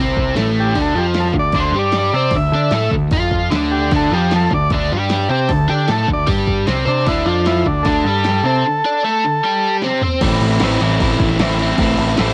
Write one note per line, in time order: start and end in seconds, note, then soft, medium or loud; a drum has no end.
0.00 0.34 C2 medium
0.00 0.35 C3 medium
0.00 0.36 C4 loud
0.17 kick medium
0.35 0.74 A1 medium
0.35 0.75 A2 medium
0.35 0.76 A3 loud
0.35 snare loud
0.35 open hi-hat medium
0.60 0.79 G4 medium
0.75 0.94 D2 loud
0.75 0.95 D3 medium
0.75 0.96 D4 loud
0.75 kick loud
0.75 open hi-hat medium
0.81 0.99 A4 medium
0.95 1.32 F2 medium
0.95 1.34 F3 medium
0.95 1.35 F4 medium
0.95 1.06 G4 medium
1.14 snare loud
1.14 open hi-hat medium
1.20 1.28 A4 medium
1.34 1.53 D2 medium
1.34 1.51 D3 medium
1.34 kick medium
1.39 1.58 D5 medium
1.52 1.71 D2 medium
1.52 1.75 D3 medium
1.52 1.75 D4 loud
1.52 kick loud
1.52 open hi-hat soft
1.60 1.78 C5 medium
1.72 2.10 G2 medium
1.72 2.14 G3 medium
1.76 2.15 G4 medium
1.76 1.97 D5 medium
1.92 snare loud
1.92 open hi-hat medium
1.98 2.38 D5 medium
2.13 2.31 C3 medium
2.13 2.34 C4 medium
2.13 2.35 C5 medium
2.31 2.52 D2 medium
2.31 kick loud
2.31 open hi-hat medium
2.35 2.51 D3 medium
2.35 2.91 E5 loud
2.52 2.71 D3 medium
2.52 2.73 D4 medium
2.52 2.73 D5 medium
2.71 2.91 A2 loud
2.71 2.93 A3 medium
2.71 2.93 A4 medium
2.71 snare loud
2.71 open hi-hat medium
2.91 3.11 D2 medium
2.91 3.11 D3 medium
2.91 kick medium
3.11 3.49 F2 medium
3.11 3.50 F3 medium
3.11 3.52 F4 loud
3.11 kick loud
3.11 open hi-hat medium
3.31 kick medium
3.50 3.89 D2 medium
3.50 3.91 D3 medium
3.50 3.92 D4 loud
3.50 snare loud
3.50 open hi-hat medium
3.72 3.93 G4 medium
3.91 4.10 D2 medium
3.91 4.11 D3 medium
3.91 4.12 D4 loud
3.91 kick loud
3.91 open hi-hat medium
3.96 4.15 A4 medium
4.11 4.49 F2 loud
4.11 4.51 F3 medium
4.11 4.52 F4 medium
4.11 4.34 G4 medium
4.31 snare loud
4.31 open hi-hat medium
4.36 4.53 A4 medium
4.51 4.70 D2 medium
4.51 4.68 D3 medium
4.51 4.72 D5 medium
4.51 kick medium
4.70 4.90 D2 medium
4.70 4.91 D3 medium
4.70 4.92 D4 medium
4.70 kick loud
4.70 open hi-hat soft
4.92 5.28 G2 loud
4.92 5.29 G3 medium
4.92 5.31 G4 loud
5.09 snare loud
5.09 open hi-hat medium
5.30 5.49 C3 loud
5.30 5.49 C4 medium
5.30 5.51 G4 medium
5.30 5.50 C5 medium
5.49 5.68 D2 medium
5.49 5.66 D3 medium
5.49 5.70 A4 medium
5.49 kick loud
5.49 open hi-hat medium
5.68 5.88 D3 medium
5.68 5.87 D4 medium
5.68 5.90 G4 medium
5.68 5.89 D5 loud
5.88 6.08 A2 loud
5.88 6.08 A3 medium
5.88 6.09 A4 loud
5.88 snare loud
5.88 open hi-hat medium
5.92 6.09 A4 medium
6.07 6.26 D2 medium
6.07 6.24 D3 medium
6.07 kick medium
6.13 6.30 D5 medium
6.27 6.65 G2 medium
6.27 6.67 G3 medium
6.27 6.68 G4 loud
6.27 kick loud
6.27 open hi-hat medium
6.47 kick medium
6.66 6.86 C2 medium
6.66 6.87 C3 loud
6.66 6.84 C4 loud
6.66 snare loud
6.66 open hi-hat medium
6.85 7.05 C3 medium
6.85 7.06 C4 medium
6.85 7.08 D4 medium
6.85 7.06 C5 loud
7.05 7.25 D2 loud
7.05 7.25 D3 medium
7.05 7.26 D4 loud
7.05 7.28 E4 medium
7.05 kick loud
7.05 open hi-hat medium
7.25 7.63 F2 loud
7.25 7.65 F3 loud
7.25 7.47 D4 medium
7.25 7.66 F4 medium
7.46 7.67 E4 loud
7.46 snare loud
7.46 open hi-hat medium
7.66 7.84 D2 medium
7.66 7.82 D3 medium
7.66 7.87 D4 medium
7.66 kick medium
7.83 8.04 D2 medium
7.83 8.05 D3 medium
7.83 9.77 A4 medium
7.83 kick loud
7.83 open hi-hat soft
7.87 8.06 D4 medium
8.05 8.42 G2 loud
8.05 8.45 G3 medium
8.05 8.46 G4 loud
8.24 snare loud
8.24 open hi-hat medium
8.44 8.63 C3 medium
8.44 8.65 C4 medium
8.44 8.65 C5 loud
8.66 8.81 D3 medium
8.85 9.04 D4 medium
8.85 9.05 D5 loud
9.04 9.23 A3 medium
9.04 9.24 A4 medium
9.24 9.40 D3 medium
9.44 9.83 G3 medium
9.44 9.83 G4 loud
9.82 10.02 C3 medium
9.82 10.01 C4 loud
9.82 snare medium
10.01 10.21 C4 medium
10.01 10.22 C5 medium
10.01 floor tom medium
10.21 10.38 A1 medium
10.21 10.62 A2 loud
10.21 10.63 E3 loud
10.21 10.63 A3 loud
10.21 10.63 C4 loud
10.21 10.64 E4 medium
10.21 kick loud
10.21 crash loud
10.21 crash medium
10.40 10.57 A1 medium
10.40 crash medium
10.60 10.77 A1 loud
10.60 10.79 A2 medium
10.60 10.81 E3 medium
10.60 10.81 A3 medium
10.60 snare loud
10.60 crash medium
10.64 10.82 C4 medium
10.64 10.82 E4 medium
10.79 10.97 A1 loud
10.79 10.99 A2 medium
10.79 11.00 E3 medium
10.79 11.01 A3 loud
10.79 11.01 C4 medium
10.79 11.02 E4 medium
10.79 crash soft
11.00 11.17 A1 medium
11.00 11.38 A2 medium
11.00 11.40 E3 medium
11.00 11.40 A3 medium
11.00 11.40 C4 loud
11.00 11.41 E4 loud
11.00 kick loud
11.00 crash medium
11.19 11.36 A1 medium
11.19 kick medium
11.19 crash medium
11.30 snare soft
11.39 11.72 A1 medium
11.39 11.58 A2 medium
11.39 11.59 E3 medium
11.39 11.59 A3 medium
11.39 11.60 C4 medium
11.39 11.61 E4 medium
11.39 snare loud
11.39 crash medium
11.59 11.77 A2 medium
11.59 11.79 E3 medium
11.59 11.78 A3 medium
11.59 11.79 C4 medium
11.59 11.80 E4 medium
11.59 crash medium
11.78 11.95 A1 medium
11.78 12.16 A2 medium
11.78 12.17 E3 loud
11.78 12.17 A3 loud
11.78 12.18 C4 loud
11.78 12.19 E4 loud
11.78 kick loud
11.78 crash medium
11.97 12.14 A1 loud
11.97 crash medium
12.17 12.34 A1 loud
12.17 12.34 A2 medium
12.17 12.34 E3 medium
12.17 12.34 A3 medium
12.17 12.34 C4 medium
12.17 12.34 E4 medium
12.17 snare loud
12.17 crash medium